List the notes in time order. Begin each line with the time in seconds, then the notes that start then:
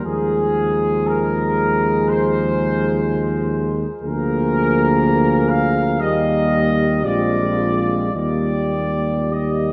0.03 D#2 F3 G#3 G#4
1.07 A#4
2.09 C5
4.02 D2 F3 A#3 G#4 A#4
5.50 F5
6.00 D#2 G3 A#3 G4 D#5
7.04 A#1 G#3 C4 F4 D5
8.14 D#2 G3 A#3 G4 D5
9.32 G3 A#3 G4 D#5